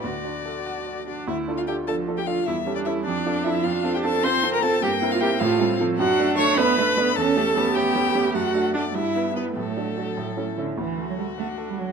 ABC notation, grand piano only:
X:1
M:6/8
L:1/8
Q:3/8=101
K:D
V:1 name="Grand piano"
D,, D A f d F | [K:Dm] D,, [DFA] [DFA] [DFA] [DFA] [DFA] | E,, [^CGA] [CGA] F,, [DFA] [DFA] | F,, [CFA] [CFA] [CFA] [CFA] [CFA] |
G,, [CEB] [CEB] A,, [CFA] [CFA] | [K:D] F,, [A,DA] [A,DA] [A,DA] [A,DA] [A,DA] | E,, [A,CG] [A,CG] [A,CG] [A,CG] [A,CG] | F,, [A,DF] [A,DF] G,, [B,EB] [B,EB] |
A,, [DFA] [DFA] A,, [CEA] [CEA] | D,, A, A f A F |]